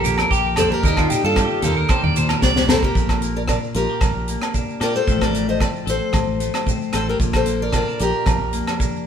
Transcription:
Already playing: A#1 F3 D4 G4 A#4
0.04 F2 A#3 G4, closed hi-hat, shekere
0.18 A#4, cross-stick, low agogo, shekere
0.30 A#1 G4, kick, shekere
0.56 A#3 A4 C5 D5, cross-stick, closed hi-hat, high conga, low conga, low agogo, shekere
0.71 G4 A#4
0.83 D#2 D#3 A#3 D4 D#4 A#4, kick, shekere
0.88 G4
0.97 F4, kick, cross-stick, low agogo
1.10 D4 G4, closed hi-hat, shekere
1.23 G2 F4 A4, shekere
1.36 G4, kick, cross-stick, low agogo, shekere
1.62 D#2 A#3 F4 G4 A4 A#4, closed hi-hat, low conga, shekere
1.77 A#4, muted clean electric guitar stroke
1.89 G4 C5, kick, cross-stick, low agogo, shekere
2.03 D#2 D5, high conga, low conga
2.16 A#2 D4 C5, closed hi-hat, shekere
2.29 A#4, cross-stick, low agogo
2.42 C2 D5, kick, snare, shekere
2.56 snare, high conga
2.68 C4 A4 A#4 C5, snare, high conga, low conga, low agogo, shekere
2.83 D4 G4 A#4, kick, shekere
2.95 A#1 A#2, kick, shekere
3.09 kick, cross-stick, low agogo, shekere
3.22 A#3, closed hi-hat, shekere
3.36 A#4 D5
3.48 D4 A#4 D5, kick, cross-stick, low agogo, shekere
3.63 shekere
3.74 A#1 F4 G4 A#4, closed hi-hat, shekere
3.90 G4
4.01 A#1, muted clean electric guitar stroke, kick, cross-stick, low agogo, shekere
4.15 A#1
4.28 A#3, closed hi-hat, shekere
4.42 cross-stick, low agogo, shekere
4.54 D4, kick, shekere
4.70 shekere
4.80 A#2 G4 A#4 D5, cross-stick, closed hi-hat, low agogo, shekere
4.96 A4 C5
5.06 A1 A2 F3 A3 C4 A4, kick, shekere
5.21 A#4 D5, kick, cross-stick, low agogo, shekere
5.33 A3, closed hi-hat, shekere
5.49 C5 D#5
5.60 C4 A4 D5, kick, cross-stick, low agogo, shekere
5.76 shekere
5.86 A1 A4 C5, closed hi-hat, shekere
6.11 A1 A2, kick, cross-stick, low agogo
6.15 shekere
6.27 A1
6.40 A3, closed hi-hat, shekere
6.54 cross-stick, low agogo, shekere
6.67 C4, kick, shekere
6.82 shekere
6.93 A1 A4 C5, cross-stick, closed hi-hat, low agogo, shekere
7.09 G4 A#4
7.19 A#1 A#2, kick, shekere
7.33 A4 C5, kick, cross-stick, low agogo, shekere
7.46 A#3, closed hi-hat, shekere
7.62 A#4 D5
7.73 C4 A#4 D5, kick, cross-stick, low agogo, shekere
7.87 D4, shekere
7.99 A#1 G4 A#4, closed hi-hat, shekere
8.26 A#1 F2, kick, cross-stick, low agogo, shekere
8.40 A#1
8.53 A#3, closed hi-hat, shekere
8.67 cross-stick, low agogo, shekere
8.79 D4, kick, shekere
8.96 shekere

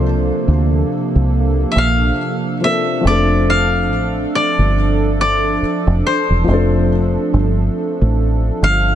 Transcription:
Already playing: C2 C3 F3 A#3 C4 D4 A4 C5
0.48 D2
1.15 C2
1.72 E5
1.76 A#1 F5
2.61 F3 A#3 C4 D4 E5
2.65 A4
3.01 F3 A3
3.05 F1 F3 C4 D4 D5
3.10 A4
3.50 F5
3.91 A1
4.35 D5
4.58 G1
5.21 D5
5.62 muted fingered electric bass stroke
5.87 F1
6.06 C5
6.30 E1
6.44 F3 A3
6.48 F1 C4 D4
6.53 A4
7.34 G1
8.01 A1
8.62 G1 F5

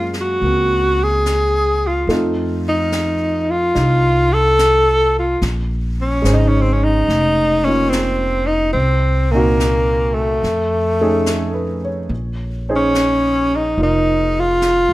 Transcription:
Already playing: F#2 G#3 A#3 C#4 F4 F5
0.13 snare
0.21 F#4
0.41 C#2 A#3, brush sweep
0.46 C4
1.04 G#4
1.26 snare, hi-hat pedal
1.87 F4
2.07 F2 A3 C4 D#4 F4, brush sweep, snare
2.69 D#4
2.92 snare, hi-hat pedal
3.51 F4
3.75 C2 D#4 F4, brush sweep, snare
4.33 A4
4.59 snare, hi-hat pedal
5.19 F4
5.42 A#1, brush sweep, snare
6.01 C#4
6.22 G#1 G#3 C5, snare, hi-hat pedal
6.30 C#3 D#4
6.35 D#4
6.48 C#4
6.61 C4
6.73 C#4
6.84 D#4
7.08 F1, brush sweep, snare
7.65 A#3 C#4 D#4 F4
7.89 C4, snare, hi-hat pedal
8.47 D#4
8.73 C2 C4, brush sweep
9.31 A#2 A#3 C4 D#4
9.36 F#4
9.60 snare, hi-hat pedal
10.14 A3
10.43 F2, brush sweep, snare
11.01 A3 C#4 D#4 G#4
11.26 A4, snare, hi-hat pedal
11.54 B4
11.85 C#5
12.09 A#1, brush sweep
12.69 C#4 D#4 G#4 C5
12.76 C#4
12.95 snare, hi-hat pedal
13.56 D#4
13.78 F1 D#4 F4, brush sweep
13.82 D#4 A#4
14.40 F4
14.62 snare, hi-hat pedal
14.89 C2

